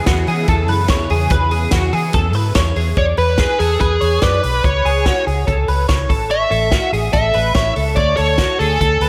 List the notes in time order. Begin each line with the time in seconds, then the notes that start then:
Already playing: C#3 E3 B3 E4 G#4
0.06 E2 F#4, kick, snare, hi-hat pedal, ride
0.27 E3 G#4, open hi-hat
0.48 E2 A4, kick, hi-hat pedal, ride
0.68 F#2 B4, open hi-hat
0.88 E2 C#5, kick, snare, hi-hat pedal, ride
1.10 E2 G#4, open hi-hat
1.30 E2 B4, kick, hi-hat pedal, ride
1.51 G#4, open hi-hat
1.71 E2 F#4, kick, snare, hi-hat pedal, ride
1.93 E3 G#4, open hi-hat
2.13 E2 A4, kick, hi-hat pedal, ride
2.33 G#2 B4, open hi-hat
2.55 E2 C#5, kick, snare, hi-hat pedal, ride
2.76 E2 G#4, open hi-hat
2.97 E2 C#5 D5, kick, closed hi-hat
3.17 E2 B4, open hi-hat
3.38 G#4, kick, snare, closed hi-hat
3.59 E2 G#4 A4, open hi-hat
3.80 E2 G#4 B4, kick, closed hi-hat
4.01 E2 C#5, open hi-hat
4.22 F#2 B4 D5, kick, snare, closed hi-hat
4.43 B1 B4, open hi-hat
4.64 C#2 B4 C#5, kick, closed hi-hat
4.85 C#2 G#4, open hi-hat
5.06 F#4, kick, snare, closed hi-hat
5.27 C#2 G#4, open hi-hat
5.47 C#2 A4, kick, closed hi-hat
5.68 C#2 B4, open hi-hat
5.88 C#2 C#5, kick, snare, closed hi-hat
6.09 A1 A4, kick, open hi-hat
6.30 C#5 E5, closed hi-hat
6.51 A1 A4, open hi-hat
6.72 F#4, kick, snare, closed hi-hat
6.93 A1 G#4, open hi-hat
7.13 A1 A4 E5, kick, closed hi-hat
7.33 A1 B4, open hi-hat
7.54 A1 C#5, kick, snare, closed hi-hat
7.76 C#2 A4, open hi-hat
7.96 D2 C#5 D5, kick, closed hi-hat
8.17 D2 A4 C#5, open hi-hat
8.38 F#4, kick, snare, closed hi-hat
8.59 D2 G#4 A4, open hi-hat
8.81 D2 A4, kick, closed hi-hat
9.00 D2 B4, open hi-hat